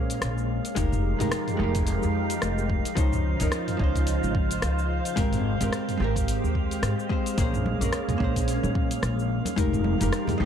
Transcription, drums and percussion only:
0.10 open hi-hat, cabasa
0.22 cross-stick, open hi-hat, cabasa
0.38 cabasa
0.65 open hi-hat, cabasa
0.76 kick, open hi-hat, cabasa
0.92 mid tom, cabasa
1.20 mid tom, open hi-hat, cabasa
1.32 cross-stick, open hi-hat, cabasa
1.48 mid tom, open hi-hat, cabasa
1.59 cross-stick
1.75 kick, open hi-hat, cabasa
1.87 open hi-hat, cabasa
2.03 cabasa
2.30 open hi-hat, cabasa
2.42 cross-stick, open hi-hat, cabasa
2.58 cabasa
2.69 kick
2.85 open hi-hat, cabasa
2.97 kick, open hi-hat, cabasa
3.12 mid tom, cabasa
3.40 mid tom, open hi-hat, cabasa
3.52 cross-stick, open hi-hat, cabasa
3.68 mid tom, open hi-hat, cabasa
3.79 kick
3.95 kick, open hi-hat, cabasa
4.07 open hi-hat, cabasa
4.24 cabasa
4.35 kick
4.51 open hi-hat, cabasa
4.62 cross-stick, open hi-hat, cabasa
4.79 cabasa
5.05 open hi-hat, cabasa
5.17 kick, open hi-hat, cabasa
5.33 mid tom, open hi-hat, cabasa
5.61 mid tom, open hi-hat, cabasa
5.73 cross-stick, open hi-hat, cabasa
5.89 mid tom, open hi-hat, cabasa
6.00 cross-stick
6.16 kick, open hi-hat, cabasa
6.28 open hi-hat, cabasa
6.44 cabasa
6.55 kick
6.71 open hi-hat, cabasa
6.83 cross-stick, open hi-hat, cabasa
6.99 cabasa
7.10 kick
7.26 open hi-hat, cabasa
7.38 kick, open hi-hat, cabasa
7.54 mid tom, cabasa
7.66 high conga
7.81 mid tom, open hi-hat, cabasa
7.92 cross-stick, open hi-hat, cabasa
8.09 mid tom, open hi-hat, high conga, low conga, cabasa
8.20 kick
8.36 kick, open hi-hat, cabasa
8.48 open hi-hat, cabasa
8.63 high conga, cabasa
8.75 kick
8.91 open hi-hat, cabasa
9.03 cross-stick, open hi-hat, high conga, cabasa
9.19 cabasa
9.45 open hi-hat, high conga, cabasa
9.58 kick, open hi-hat, cabasa
9.73 mid tom, cabasa
9.84 high conga
10.01 mid tom, open hi-hat, cabasa
10.13 cross-stick, open hi-hat, cabasa
10.27 mid tom, open hi-hat, high conga, low conga, cabasa
10.40 cross-stick

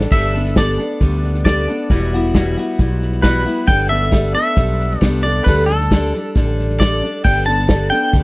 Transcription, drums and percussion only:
0.01 snare
0.12 kick, snare, crash
0.34 snare
0.45 snare
0.56 kick, snare, hi-hat pedal
0.79 snare
1.01 kick, snare
1.23 snare
1.34 snare
1.45 kick, snare, hi-hat pedal
1.68 snare
1.90 kick, snare
2.13 snare
2.23 snare
2.35 kick, snare, hi-hat pedal
2.58 snare
2.79 kick, snare
3.02 snare
3.12 snare
3.23 kick, snare, hi-hat pedal
3.46 snare
3.68 kick, snare
3.91 snare
4.02 snare
4.12 kick, snare, hi-hat pedal
4.35 snare
4.56 kick, snare
4.80 snare
4.91 snare
5.02 kick, snare, hi-hat pedal
5.24 snare
5.46 kick, snare
5.69 snare
5.81 snare
5.91 kick, snare, hi-hat pedal
6.14 snare
6.36 kick, snare
6.59 snare
6.70 snare
6.80 kick, snare, hi-hat pedal
7.03 snare
7.25 kick, snare
7.48 snare
7.59 snare
7.69 kick, snare, hi-hat pedal
7.92 snare
8.13 kick, snare

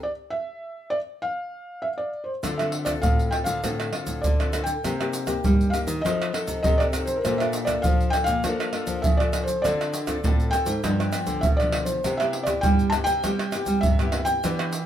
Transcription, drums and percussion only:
2.44 pandeiro, tamborim, shaker, surdo
2.59 pandeiro, tamborim, shaker
2.72 pandeiro
2.86 pandeiro, tamborim, shaker, surdo
3.03 pandeiro, shaker, surdo
3.19 pandeiro, shaker, surdo
3.32 pandeiro, tamborim
3.46 pandeiro, shaker, surdo
3.64 pandeiro, tamborim, shaker, surdo
3.80 pandeiro, tamborim, shaker
3.93 pandeiro, tamborim
4.07 pandeiro, shaker, surdo
4.24 pandeiro, shaker, surdo
4.40 pandeiro, tamborim, shaker
4.53 pandeiro, tamborim, shaker
4.67 pandeiro, shaker
4.84 pandeiro, tamborim, shaker, surdo
5.01 pandeiro, tamborim, shaker
5.13 pandeiro, shaker
5.27 pandeiro, tamborim, shaker, surdo
5.44 pandeiro, shaker, surdo
5.61 pandeiro, shaker, surdo
5.74 pandeiro, tamborim, shaker
5.88 pandeiro, shaker, surdo
6.06 pandeiro, tamborim, shaker, surdo
6.22 pandeiro, tamborim, shaker
6.34 pandeiro, tamborim
6.48 pandeiro, shaker, surdo
6.64 pandeiro, shaker, surdo
6.80 pandeiro, tamborim, shaker
6.93 pandeiro, tamborim, shaker
7.07 pandeiro, shaker
7.25 pandeiro, tamborim, shaker, surdo
7.40 pandeiro, tamborim, shaker
7.53 pandeiro, shaker
7.67 pandeiro, tamborim, shaker, surdo
7.84 pandeiro, shaker, surdo
8.01 pandeiro, shaker, surdo
8.13 pandeiro, tamborim, shaker
8.27 pandeiro, shaker, surdo
8.44 pandeiro, tamborim, shaker, surdo
8.60 pandeiro, tamborim, shaker
8.73 pandeiro, tamborim
8.87 pandeiro, shaker, surdo
9.04 pandeiro, shaker, surdo
9.20 pandeiro, tamborim, shaker
9.33 pandeiro, tamborim, shaker
9.48 pandeiro, shaker
9.65 pandeiro, tamborim, shaker, surdo
9.81 pandeiro, tamborim, shaker
9.94 pandeiro, shaker
10.07 pandeiro, tamborim, shaker, surdo
10.24 pandeiro, shaker, surdo
10.40 pandeiro, shaker, surdo
10.53 pandeiro, tamborim, shaker
10.66 pandeiro, shaker, surdo
10.84 pandeiro, tamborim, shaker, surdo
11.00 pandeiro, tamborim, shaker
11.13 pandeiro, tamborim, shaker
11.27 pandeiro, shaker, surdo
11.43 pandeiro, shaker, surdo
11.60 pandeiro, tamborim, shaker
11.72 pandeiro, tamborim
11.86 pandeiro, shaker
12.04 pandeiro, tamborim, shaker, surdo
12.20 pandeiro, tamborim, shaker
12.33 pandeiro
12.47 pandeiro, tamborim, shaker, surdo
12.63 pandeiro, shaker, surdo
12.79 pandeiro, shaker, surdo
12.92 pandeiro, tamborim, shaker, surdo
13.06 pandeiro, shaker, surdo
13.24 pandeiro, tamborim, shaker, surdo
13.39 pandeiro, tamborim, shaker
13.52 pandeiro, tamborim, shaker
13.66 pandeiro, shaker, surdo
13.83 pandeiro, shaker, surdo
13.99 pandeiro, tamborim, shaker
14.12 pandeiro, tamborim
14.26 pandeiro, shaker
14.44 pandeiro, tamborim, shaker, surdo
14.59 pandeiro, tamborim, shaker
14.73 pandeiro, shaker

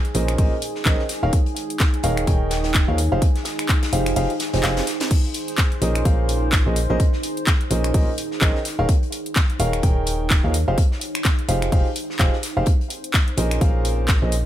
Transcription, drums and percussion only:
0.05 closed hi-hat
0.14 closed hi-hat, open hi-hat
0.28 finger snap, closed hi-hat
0.38 kick, closed hi-hat, open hi-hat
0.62 closed hi-hat, open hi-hat
0.75 snare
0.85 kick, snare, clap, closed hi-hat
0.99 snare
1.09 snare, closed hi-hat, open hi-hat
1.33 kick, closed hi-hat
1.46 closed hi-hat
1.56 closed hi-hat, open hi-hat
1.70 closed hi-hat
1.80 kick, snare, clap, closed hi-hat
1.94 closed hi-hat
2.03 closed hi-hat, open hi-hat
2.17 finger snap, closed hi-hat
2.27 kick, closed hi-hat
2.51 snare, closed hi-hat, open hi-hat
2.64 snare, closed hi-hat
2.74 kick, snare, clap, closed hi-hat
2.98 closed hi-hat, open hi-hat
3.22 kick, closed hi-hat
3.35 snare, closed hi-hat
3.45 snare, closed hi-hat, open hi-hat
3.59 finger snap, closed hi-hat
3.69 kick, clap, closed hi-hat
3.83 snare, closed hi-hat
3.93 open hi-hat
4.06 finger snap, closed hi-hat
4.16 closed hi-hat, open hi-hat
4.30 closed hi-hat
4.40 snare, closed hi-hat, open hi-hat
4.53 snare, closed hi-hat
4.63 snare, clap, closed hi-hat
4.77 snare, closed hi-hat
4.87 snare, closed hi-hat, open hi-hat
5.00 snare, closed hi-hat
5.11 kick, closed hi-hat, crash
5.24 closed hi-hat
5.34 closed hi-hat, open hi-hat
5.48 closed hi-hat
5.58 kick, snare, clap, closed hi-hat
5.72 closed hi-hat
5.82 closed hi-hat, open hi-hat
5.95 finger snap, closed hi-hat
6.05 kick, closed hi-hat
6.29 closed hi-hat, open hi-hat
6.52 kick, snare, clap, closed hi-hat
6.76 closed hi-hat, open hi-hat
7.00 kick, closed hi-hat
7.13 snare
7.23 closed hi-hat, open hi-hat
7.37 closed hi-hat
7.47 kick, snare, clap, closed hi-hat
7.61 closed hi-hat
7.71 closed hi-hat, open hi-hat
7.84 finger snap, closed hi-hat
7.94 kick, closed hi-hat, open hi-hat
8.18 closed hi-hat, open hi-hat
8.31 snare
8.41 kick, snare, clap, closed hi-hat
8.55 snare
8.65 snare, closed hi-hat, open hi-hat
8.89 kick, closed hi-hat
9.03 closed hi-hat
9.12 closed hi-hat, open hi-hat
9.26 closed hi-hat
9.36 kick, snare, clap, closed hi-hat
9.50 closed hi-hat
9.60 closed hi-hat, open hi-hat
9.73 finger snap, closed hi-hat
9.83 kick, closed hi-hat
10.07 closed hi-hat, open hi-hat
10.30 kick, snare, clap, closed hi-hat
10.54 closed hi-hat, open hi-hat
10.78 kick, closed hi-hat
10.92 snare
11.01 closed hi-hat, open hi-hat
11.15 finger snap, closed hi-hat
11.25 kick, snare, clap, closed hi-hat
11.39 closed hi-hat
11.49 closed hi-hat, open hi-hat
11.62 finger snap, closed hi-hat
11.72 kick, closed hi-hat, open hi-hat
11.96 closed hi-hat, open hi-hat
12.10 snare
12.19 kick, snare, clap, closed hi-hat
12.33 snare
12.43 snare, closed hi-hat, open hi-hat
12.66 kick, closed hi-hat
12.81 closed hi-hat
12.90 closed hi-hat, open hi-hat
13.04 closed hi-hat
13.14 kick, snare, clap, closed hi-hat
13.28 closed hi-hat
13.37 closed hi-hat, open hi-hat
13.51 finger snap, closed hi-hat
13.61 kick, closed hi-hat
13.85 closed hi-hat, open hi-hat
14.08 kick, snare, clap, closed hi-hat
14.32 closed hi-hat, open hi-hat

